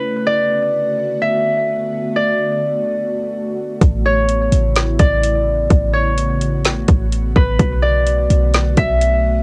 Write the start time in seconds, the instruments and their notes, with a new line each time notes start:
Already playing: ambient pad A3, harp B4 C#5
0.04 ambient pad D3 B3 F#4
0.27 harp D5
1.22 harp E5
1.93 ambient pad F#4
2.16 harp D5
3.81 808-style bass A1, ambient pad C#3 B3 E4, kick, closed hi-hat
4.06 harp C#5
4.29 closed hi-hat
4.52 808-style bass A1, closed hi-hat
4.76 snare, closed hi-hat
4.99 808-style bass A1, harp D5, kick, closed hi-hat
5.23 closed hi-hat
5.70 808-style bass A1, ambient pad F#4, kick, closed hi-hat
5.93 harp C#5
6.18 closed hi-hat
6.41 closed hi-hat
6.65 snare, closed hi-hat
6.88 808-style bass A1, kick, closed hi-hat
7.12 closed hi-hat
7.36 808-style bass A1, harp B4, kick
7.59 808-style bass B1, ambient pad D3 A3 B3 F#4, kick, closed hi-hat
7.82 harp D5
8.07 closed hi-hat
8.30 808-style bass B1, closed hi-hat
8.54 snare, closed hi-hat
8.77 808-style bass B1, harp E5, kick, closed hi-hat
9.01 closed hi-hat